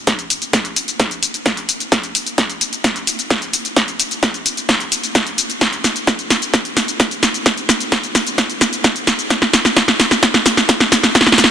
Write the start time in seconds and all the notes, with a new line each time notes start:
0.07 kick, snare, closed hi-hat, shaker
0.19 closed hi-hat, shaker
0.30 open hi-hat, shaker
0.42 closed hi-hat, shaker
0.53 kick, snare, closed hi-hat, shaker
0.65 closed hi-hat, shaker
0.76 open hi-hat, shaker
0.88 closed hi-hat, shaker
1.00 kick, snare, closed hi-hat, shaker
1.11 closed hi-hat, shaker
1.23 open hi-hat, shaker
1.34 closed hi-hat, shaker
1.46 kick, snare, closed hi-hat, shaker
1.57 closed hi-hat, shaker
1.69 open hi-hat, shaker
1.80 closed hi-hat, shaker
1.92 kick, snare, closed hi-hat, shaker
2.03 closed hi-hat, shaker
2.15 open hi-hat, shaker
2.27 closed hi-hat, shaker
2.38 kick, snare, closed hi-hat, shaker
2.50 closed hi-hat, shaker
2.61 open hi-hat, shaker
2.73 closed hi-hat, shaker
2.84 kick, snare, closed hi-hat, shaker
2.96 closed hi-hat, shaker
3.07 open hi-hat, shaker
3.19 closed hi-hat, shaker
3.30 kick, snare, closed hi-hat, shaker
3.42 closed hi-hat, shaker
3.53 open hi-hat, shaker
3.65 closed hi-hat, shaker
3.76 kick, snare, closed hi-hat, shaker
3.88 closed hi-hat, shaker
4.00 open hi-hat, shaker
4.11 closed hi-hat, shaker
4.23 kick, snare, closed hi-hat, shaker
4.34 closed hi-hat, shaker
4.46 open hi-hat, shaker
4.57 closed hi-hat, shaker
4.69 kick, snare, closed hi-hat, shaker
4.80 closed hi-hat, shaker
4.92 open hi-hat, shaker
5.03 closed hi-hat, shaker
5.15 kick, snare, closed hi-hat, shaker
5.27 closed hi-hat, shaker
5.38 open hi-hat, shaker
5.50 closed hi-hat, shaker
5.61 kick, snare, closed hi-hat, shaker
5.73 closed hi-hat, shaker
5.84 snare, open hi-hat, shaker
5.96 closed hi-hat, shaker
6.07 kick, snare, closed hi-hat, shaker
6.19 closed hi-hat, shaker
6.30 snare, open hi-hat, shaker
6.42 closed hi-hat, shaker
6.54 kick, snare, closed hi-hat, shaker
6.65 closed hi-hat, shaker
6.77 snare, open hi-hat, shaker
6.88 closed hi-hat, shaker
7.00 kick, snare, closed hi-hat, shaker
7.11 closed hi-hat, shaker
7.23 snare, open hi-hat, shaker
7.34 closed hi-hat, shaker
7.46 kick, snare, closed hi-hat, shaker
7.58 closed hi-hat, shaker
7.69 snare, open hi-hat, shaker
7.80 closed hi-hat, shaker
7.92 kick, snare, closed hi-hat, shaker
8.04 closed hi-hat, shaker
8.15 snare, open hi-hat, shaker
8.27 closed hi-hat, shaker
8.38 kick, snare, closed hi-hat, shaker
8.50 closed hi-hat, shaker
8.61 snare, open hi-hat, shaker
8.73 closed hi-hat, shaker
8.84 kick, snare, closed hi-hat, shaker
8.96 closed hi-hat, shaker
9.07 snare, open hi-hat, shaker
9.19 closed hi-hat, shaker
9.30 kick, snare, closed hi-hat, shaker
9.42 snare, closed hi-hat, shaker
9.53 snare, open hi-hat, shaker
9.65 snare, closed hi-hat, shaker
9.77 kick, snare, closed hi-hat, shaker
9.88 snare, closed hi-hat, shaker
10.00 snare, open hi-hat, shaker
10.11 snare, closed hi-hat, shaker
10.23 kick, snare, closed hi-hat, shaker
10.34 snare, closed hi-hat, shaker
10.46 snare, open hi-hat, shaker
10.57 snare, closed hi-hat, shaker
10.69 kick, snare, closed hi-hat, shaker
10.80 snare, closed hi-hat, shaker
10.92 snare, open hi-hat, shaker
11.03 snare, closed hi-hat, shaker
11.15 kick, snare, closed hi-hat, shaker
11.21 snare
11.27 snare, closed hi-hat, shaker
11.32 snare
11.38 snare, open hi-hat, shaker
11.44 snare